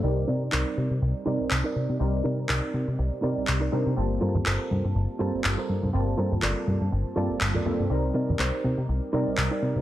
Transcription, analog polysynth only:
X:1
M:4/4
L:1/8
Q:"Swing 16ths" 1/4=122
K:Cdor
V:1 name="Analog polysynth"
[G,CEBd]4- [G,CEBd] [G,CEBd]3 | [G,CEBd]4- [G,CEBd] [G,CEBd]2 [G,CDEB] | [G,B,CFa]4- [G,B,CFa] [G,B,CFa]3 | [G,B,CFa]4- [G,B,CFa] [G,B,CFa]2 [G,B,CFA] |
[G,CEBd]4- [G,CEBd] [G,CEBd]3 |]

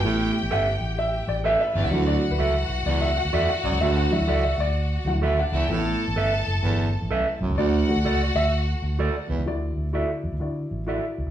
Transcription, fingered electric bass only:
X:1
M:4/4
L:1/16
Q:"Swing" 1/4=127
K:D
V:1 name="Fingered electric bass" clef=bass
A,,,2 z A,,, G,,,2 A,,,4 A,,,3 z G,,, C,, | D,,2 z D,, C,,2 B,,,2 C,,3 D,, E,, z B,,, C,, | D,,2 z D,, C,,2 D,,4 D,,4 C,,2 | A,,,2 z A,,, G,,,2 F,,,2 G,,,3 A,,, B,,, z B,,, C,, |
D,,2 z D,, C,,2 D,,4 D,,3 z C,, C,, | D,,2 D,,3 z E,, D,, D,2 A,,,3 z C,, C,, |]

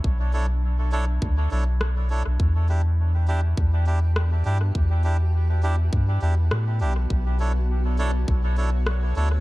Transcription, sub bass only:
X:1
M:4/4
L:1/16
Q:"Swing 16ths" 1/4=102
K:Bm
V:1 name="Sub bass" clef=bass
B,,,8 D,,2 B,,,4- B,,, B,,, | E,,8 E,,6 G,,2 | E,,8 G,,2 E,,2 A,,2 B,,,2 | B,,,8 B,,,6 D,,2 |]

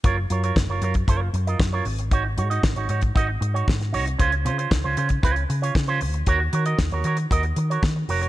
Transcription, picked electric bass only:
X:1
M:4/4
L:1/16
Q:1/4=116
K:Gblyd
V:1 name="Picked electric bass" clef=bass
G,,,2 G,,2 G,,, G,,, G,,2 G,,,2 G,,2 G,,2 A,,,2- | A,,,2 A,,2 A,,, A,,, A,,2 A,,,2 A,,2 A,,2 C,,2 | D,,2 D,2 D,, D,, D,2 D,,2 D,2 D,2 =D,,2 | E,,2 E,2 E,, E,, E,2 E,,2 E,2 E,2 F,,,2 |]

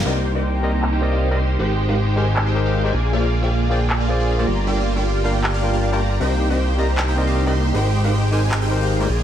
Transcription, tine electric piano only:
X:1
M:4/4
L:1/16
Q:"Swing 16ths" 1/4=156
K:Cm
V:1 name="Tine electric piano"
[C,CBde] z2 [C,CBde] z2 [C,CBde] z3 [C,CBde]3 [C,CBde] z2 | [A,EGBc] z2 [A,EGBf] z2 [A,EGBc] z3 [A,EGBc]3 [A,EGBc] z2 | [B,FAcd] z2 [B,FAcg] z2 [B,FAcd] z3 [B,FAcd]3 [B,FAcd] z2 | [G,DFBg] z2 [G,DFBg] z2 [G,DFBf] z3 [G,DFBg]3 [G,DFBg] z2 |
[C,CBde] z2 [C,CBde] z2 [C,CBde] z3 [C,CBde]3 [C,CBde] z2 | [A,EGBc] z2 [A,EGBf] z2 [A,EGBc] z3 [A,EGBc]3 [A,EGBc] z2 |]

